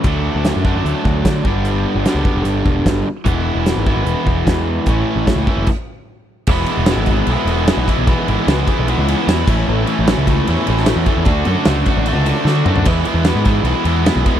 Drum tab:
CC |----------------|----------------|----------------|--------x-------|
RD |----------------|----------------|----------------|----------------|
HH |x---x---x---x---|x---x---x---x---|x---x---x---x---|x---x-----------|
SD |----o-------o---|----o-------o---|----o-------o---|----o-----------|
T2 |----------------|----------------|----------------|----------------|
FT |----------------|----------------|----------------|----------------|
BD |o-----o---o-o-o-|------o---o-o---|o-----o---o-o---|o---o-o-o-------|

CC |x---------------|--------------x-|----------------|----------------|
RD |--x-x-x-x-x-x-x-|x-x-x-x-x-x-x---|--x-x-x-x-x-x-x-|x-x-x-x-x-x-----|
HH |----------------|----------------|----------------|----------------|
SD |----o-------o---|----o-------o---|----o------oo---|----o-------o---|
T2 |----------------|----------------|----------------|--------------o-|
FT |----------------|----------------|----------------|---------------o|
BD |o-----o-------o-|o-----o-------o-|------o-------o-|o-----o---------|

CC |x---------------|
RD |x-x-x-x-x-x-x-x-|
HH |----------------|
SD |----o-------o---|
T2 |----------------|
FT |----------------|
BD |o-----o-------o-|